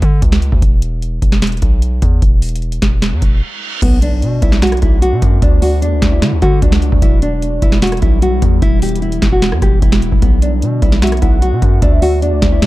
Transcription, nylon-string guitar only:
3.82 B3
4.02 D4
4.42 E4
4.62 F#4
4.82 E4
5.02 F#4
5.42 D4
5.62 F#4
5.82 D4
6.12 E4
6.42 F#4
6.62 D4
7.02 E4
7.22 D4
7.62 E4
7.82 F#4
8.02 E4
8.22 F#4
8.62 E4
8.82 G4
9.02 E4
9.32 F#4
9.62 G4
9.82 E4
10.22 B3
10.42 D4
10.82 E4
11.02 F#4
11.22 E4
11.42 F#4
11.82 D4
12.02 F#4
12.22 D4
12.52 E4

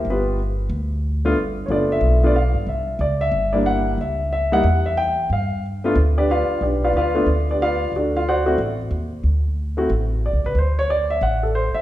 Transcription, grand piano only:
0.10 B3 F4 G4 B4
1.25 A3 B3 D4 F4
1.66 A3 B3 C#5
1.70 D4 F4 D5
1.92 E5
2.23 A3 B3 D4 F4 D5
2.36 F5
2.69 E5
3.01 D5
3.21 E5
3.53 G3 A#3 D4 E4 D5
3.66 F#5
4.01 E5
4.33 E5
4.52 G3 A#3 D#4 E4 F#5
4.86 E5
4.97 G5
5.33 F5
5.84 A3 B3 D4 F4
6.18 D4 G4 B4 D5
6.31 F4 B4 D5 F5
6.62 D4 G4 B4 D5
6.84 F4 B4 D5 F5
6.97 F4 B4 D5 F5
7.14 A3 B3 D4 F4
7.51 D4 G4 B4 D5
7.62 F4 B4 D5 F5
7.96 D4 F#4 A4 D5
8.17 F4 F5
8.29 F#4 C5 D5 F#5
8.46 A3 C4 E4 F#4
9.77 A3 C4 E4 F#4
10.26 D5
10.46 B4
10.59 C5
10.79 C#5
10.90 D5
11.10 E5
11.23 F#5
11.43 A4
11.55 C5
11.74 E5

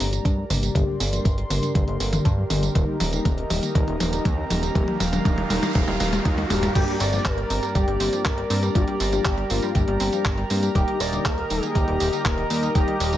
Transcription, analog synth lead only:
6.75 G4
7.00 D5
7.25 A#4
7.75 G4
8.25 A#4
8.75 G4
9.25 G4
9.50 F4
9.75 G4
10.75 G4
11.00 D5
11.25 A#4
11.62 G#4
11.75 G4
12.25 A#4
12.75 G4

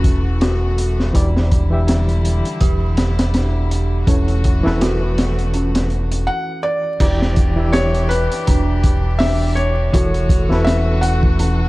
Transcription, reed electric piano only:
Already playing: E3 E4 A4 B4 C#5
1.13 E3 E4 G4 D5
1.70 E3 E4 G4 E5
4.07 E3 E4 A4 C#5
4.63 E3 E4 A4
4.67 B4
7.00 E3 E4 G4 D5
7.56 E3 E4 G4 E5
9.93 E3 E4 A4 C#5
10.49 E3 E4 A4 B4

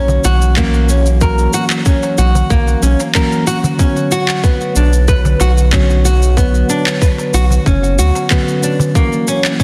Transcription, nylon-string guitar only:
Already playing: C#4
0.25 F#4
0.57 A#3
0.89 C#4
1.22 A#4
1.54 F#4
1.86 C#4
2.18 F#4
2.50 A#3
2.82 C#4
3.15 A#4
3.47 F#4
3.79 C#4
4.12 F#4
4.44 B3
4.76 D4
5.08 B4
5.41 F#4
5.73 C#4
6.05 F#4
6.37 B3
6.69 D4
7.02 B4
7.34 F#4
7.66 C#4
7.99 F#4
8.31 B3
8.63 D4
8.95 A#3
9.28 C#4
9.60 C#4

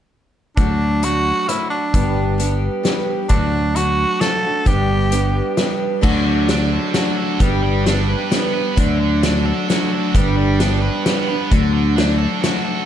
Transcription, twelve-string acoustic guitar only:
0.58 D3 F#3 A3 D4 F#4
1.03 F#3 A3 D4 F#4
1.50 F#3 A3 D4 F#4
1.95 G2 D3 G3 B3 D4 G4
2.38 G3 B3 D4 G4
2.83 G3 B3 D4 G4
3.29 D3 F#3 A3 D4 F#4
3.74 F#3 A3 D4 F#4
4.20 F#3 A3 D4 F#4
4.43 A3 D4 F#4
4.65 G2 D3 G3 B3 D4 G4
5.10 G3 B3 D4 G4
5.57 G3 B3 D4 G4
6.01 D3 F#3 A3 D4 F#4
6.48 F#3 A3 D4 F#4
6.94 F#3 A3 D4 F#4
7.39 G2 D3 G3 B3 D4 G4
7.86 G3 B3 D4 G4
8.30 G3 B3 D4 G4
8.76 D3 F#3 A3 D4 F#4
9.23 F#3 A3 D4 F#4
9.69 F#3 A3 D4 F#4
10.15 G2 D3 G3 B3 D4 G4
10.60 G3 B3 D4 G4
11.07 G3 B3 D4 G4
11.28 G3 B3 D4 G4
11.51 D3 F#3 A3 D4 F#4
11.96 F#3 A3 D4 F#4
12.42 F#3 A3 D4 F#4

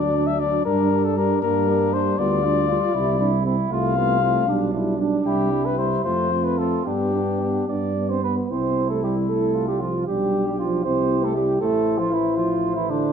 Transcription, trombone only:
Already playing: D4
0.66 D4
1.42 A#3
2.18 B3
2.44 D4
2.70 F4
2.95 E4
3.20 D4
3.45 C4
3.70 A3
3.96 B3
4.21 C4
4.47 D4
4.73 E4
4.99 D4
6.05 C4
6.87 B3
7.69 D4
8.10 C4
8.24 B3
8.51 C4
8.91 A3
9.04 G3
9.29 A3
9.69 G3
9.83 F3
10.09 G3
10.48 G3
10.61 F3
10.86 C4
11.25 A3
11.37 G3
11.61 A3
11.99 F3
12.12 E3
12.37 F3
12.77 E3
12.90 D3

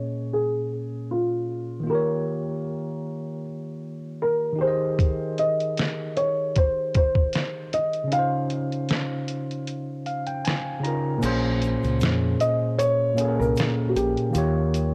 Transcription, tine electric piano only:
Already playing: A#2 A#3 C#4 G#4 C#5
1.80 D#3 A#3
1.87 F4 G4
1.95 C#5
4.53 D#3 D#4
4.59 G4 G#4
4.65 A#4 D#5
8.04 C#3 C#4
8.11 D#4 F4
8.19 C5
10.06 F5
10.27 G5
10.45 G#5
10.80 C#3 C#4 D#4 A#5
10.85 F4 A#4
11.18 A#2 A#3 C#4
11.24 G#4 C5
13.14 A#2 A#3 C#4
13.20 G#4 A4
13.28 A#4
14.31 D#3 A#3 F4
14.37 G4 C#5

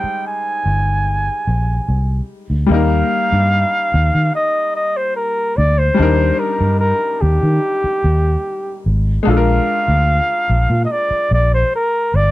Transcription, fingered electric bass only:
0.04 muted fingered electric bass stroke
0.66 G1
1.47 A#1
1.89 C2
2.50 D2
2.70 D#2
3.32 G2
3.94 D#2
4.15 D#3
5.58 D2
5.99 D#2
6.61 G2
7.22 D#2
7.43 D#3
7.84 muted fingered electric bass stroke
8.04 D#2
8.86 G#1
9.27 A#1
9.88 D2
10.50 A#1
10.70 A#2
11.11 muted fingered electric bass stroke
11.31 A#1
12.14 G1

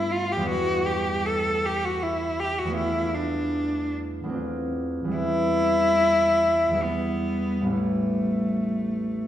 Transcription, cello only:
Already playing: E4
0.11 F4
0.32 G4
0.49 F#4
0.86 G4
1.26 A4
1.66 G4
1.85 F#4
2.02 E4
2.40 G4
2.58 F#4
2.76 E4
3.15 D4
5.16 E4
6.84 B3
7.73 A3

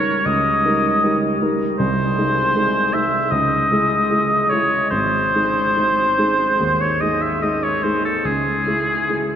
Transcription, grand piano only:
Already playing: C#2 G3 D#4 A#4
0.26 C#2
0.65 G3 D#4 A#4
1.03 G3 D#4 A#4
1.42 G3 D#4 A#4
1.79 C2
2.17 G#3 D#4 G#4
2.56 G#3 D#4 G#4
2.94 G#3 D#4 G#4
3.31 C#2
3.71 G#3 E4 G#4
4.10 G#3 E4 G#4
4.51 G#3 E4 G#4
4.92 G#1
5.34 G#3 D#4 G#4
5.76 G#3 D#4 G#4
6.18 G#3 D#4 G#4
6.60 D#2
7.02 G#3 D#4 G#4
7.42 G#3 D#4 G#4
7.83 G#3 D#4 G#4
8.25 C#2
8.66 G#3 E4 G#4
9.09 G#3 E4 G#4

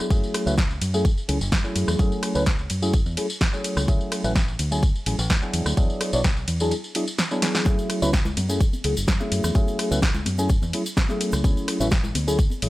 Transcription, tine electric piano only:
0.11 F#3 A3 C#4 E4 G#4
0.46 F#3 A3 C#4 E4 B4
0.93 F#3 A3 C#4 E4 G#4
1.28 F#3 A3 C#4 E4 G#4
1.64 F#3 A3 C#4 E4 G#4
1.99 F#3 A3 C#4 E4 G#4
2.35 F#3 A3 C#4 E4 B4
2.82 F#3 A3 C#4 E4 G#4
3.17 F#3 A3 C#4 E4 G#4
3.53 F#3 A3 C#4 E4 G#4
3.88 F#3 A3 C#4 E4 G#4
4.24 F#3 A3 C#4 E4 B4
4.71 F#3 A3 C#4 E4 G#4
5.06 F#3 A3 C#4 E4 G#4
5.42 F#3 B3 D4 E4 G#4
5.77 F#3 B3 D4 E4 G#4
6.13 F#3 B3 D4 E4 C#5
6.60 F#3 B3 D4 E4 G#4
6.95 F#3 B3 D4 E4 G#4
7.31 F#3 B3 D4 E4 G#4
7.66 F#3 A3 C#4 E4 G#4
8.02 F#3 A3 C#4 E4 B4
8.49 F#3 A3 C#4 E4 G#4
8.84 F#3 A3 C#4 E4 G#4
9.20 F#3 A3 C#4 E4 G#4
9.55 F#3 A3 C#4 E4 G#4
9.91 F#3 A3 C#4 E4 B4
10.38 F#3 A3 C#4 E4 G#4
10.73 F#3 A3 C#4 E4 G#4
11.09 F#3 A3 C#4 E4 G#4
11.44 F#3 A3 C#4 E4 G#4
11.80 F#3 A3 C#4 E4 B4
12.27 F#3 A3 C#4 E4 G#4
12.62 F#3 A3 C#4 E4 G#4

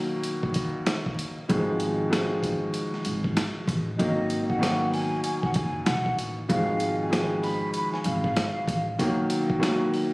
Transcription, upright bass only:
1.50 G#1
3.06 G#1
3.68 A1
3.99 G#1
5.56 F#1
5.87 B1
6.18 A1
6.50 G#1
8.05 G#1
8.68 A1

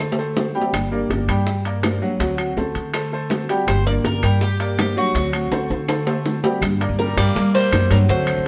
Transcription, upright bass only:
Already playing: D3
0.73 G1
1.10 G1
1.28 G2
2.19 D2
2.57 D2
2.75 D3
3.67 G1
4.04 G1
4.23 G2
5.15 D2
5.51 D2
5.70 D3
6.61 G2
6.89 G2
7.17 G2
7.35 G3
7.72 F#2
7.90 G2
8.09 D2
8.37 D2

